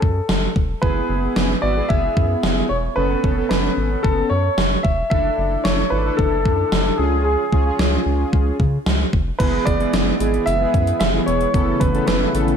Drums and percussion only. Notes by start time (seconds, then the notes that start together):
0.02 kick
0.29 snare
0.56 kick
0.83 kick
1.36 snare
1.90 kick
2.17 kick
2.43 snare
3.24 kick
3.51 snare
4.04 kick
4.58 snare
4.85 kick
5.11 kick
5.65 snare
6.19 kick
6.46 kick
6.72 snare
7.53 kick
7.79 snare
8.33 kick
8.60 kick
8.86 snare
9.13 kick
9.40 kick, closed hi-hat, crash
9.67 kick, closed hi-hat
9.80 closed hi-hat
9.93 snare, closed hi-hat
10.20 closed hi-hat
10.34 closed hi-hat
10.47 closed hi-hat
10.74 kick, closed hi-hat
10.87 closed hi-hat
11.00 snare, closed hi-hat
11.28 closed hi-hat
11.41 closed hi-hat
11.54 kick, closed hi-hat
11.81 kick, closed hi-hat
11.95 closed hi-hat
12.07 snare, closed hi-hat
12.35 closed hi-hat
12.48 closed hi-hat